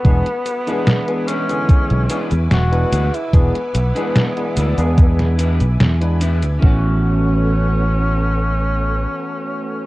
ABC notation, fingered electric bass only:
X:1
M:4/4
L:1/16
Q:1/4=73
K:A
V:1 name="Fingered electric bass" clef=bass
E,,, z8 B,,, z E,, E,,,2 D,, z | E,,, z B,,, z3 D,, E,,4 B,,, E,,3 D,, | A,,,12 z4 |]